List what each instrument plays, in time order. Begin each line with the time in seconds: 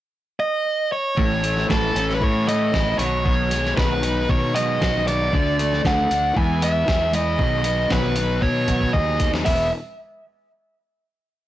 0.40 overdriven electric guitar D#5
0.92 overdriven electric guitar C#5
1.17 fingered electric bass A1, clean electric guitar A2 E3 A3, kick
1.43 clean electric guitar A2 E3, overdriven electric guitar A3, closed hi-hat
1.57 snare
1.68 fingered electric bass A1, clean electric guitar A2 E3 A3, overdriven electric guitar A4, kick, snare
1.94 fingered electric bass A1, clean electric guitar A2 E3, overdriven electric guitar C#4, closed hi-hat
2.09 snare
2.15 overdriven electric guitar B4
2.20 clean electric guitar A2 E3, fingered electric bass A2, overdriven electric guitar C#5, kick
2.47 clean electric guitar A2 E3 A3, overdriven electric guitar D#5, closed hi-hat
2.73 fingered electric bass A1, clean electric guitar A2 E3, overdriven electric guitar E4, kick, snare
2.98 fingered electric bass B1, clean electric guitar B2 D#3 F#3, overdriven electric guitar C#5, closed hi-hat
3.26 clean electric guitar B2 D#3 F#3, kick
3.51 clean electric guitar B2 D#3, overdriven electric guitar G#3, closed hi-hat
3.65 snare
3.77 fingered electric bass B1, clean electric guitar B2 D#3 F#3, overdriven electric guitar B4, kick, snare
4.03 clean electric guitar B2 D#3, overdriven electric guitar D#4, closed hi-hat
4.29 fingered electric bass B2, clean electric guitar B2 D#3, overdriven electric guitar C#5, kick
4.54 clean electric guitar B2 D#3 F#3, overdriven electric guitar G#3 D#5, closed hi-hat
4.81 fingered electric bass B1, clean electric guitar B2 D#3, overdriven electric guitar F#4, kick, snare
5.07 clean electric guitar B2 D#3, overdriven electric guitar D#4 D5, closed hi-hat
5.33 fingered electric bass D2, clean electric guitar D3 A3 D4, kick
5.59 clean electric guitar D3 A3, closed hi-hat
5.73 snare
5.85 fingered electric bass D2, clean electric guitar D3 A3 D4, overdriven electric guitar F#5, kick, snare
6.11 fingered electric bass D2, clean electric guitar D3 A3, overdriven electric guitar D4, closed hi-hat
6.36 fingered electric bass E2, clean electric guitar E3 G#3 B3, overdriven electric guitar G#5, kick
6.62 clean electric guitar E3 G#3 B3, overdriven electric guitar E5, closed hi-hat
6.87 fingered electric bass E2, clean electric guitar E3 G#3, overdriven electric guitar G#4, kick, snare
7.13 clean electric guitar E3 G#3, overdriven electric guitar E4 D#5, closed hi-hat
7.38 fingered electric bass B1, clean electric guitar B2 D#3 F#3, kick
7.64 clean electric guitar B2 D#3, overdriven electric guitar B3, closed hi-hat
7.90 fingered electric bass B1, clean electric guitar B2 D#3 F#3, overdriven electric guitar B4, kick, snare
8.16 clean electric guitar D#3, overdriven electric guitar D#4, closed hi-hat
8.41 fingered electric bass B2, clean electric guitar B2 D#3, overdriven electric guitar F#3 C#5, kick
8.68 clean electric guitar B2 D#3 F#3, overdriven electric guitar B3, kick, closed hi-hat
8.81 kick
8.93 fingered electric bass D#2, clean electric guitar B2 D#3, overdriven electric guitar G#4 D#5, kick
9.19 clean electric guitar B2 D#3, overdriven electric guitar D#4, kick, closed hi-hat
9.34 snare
9.45 fingered electric bass E1, clean electric guitar E3 G#3 B3 E4 G#4, overdriven electric guitar E5, kick, open hi-hat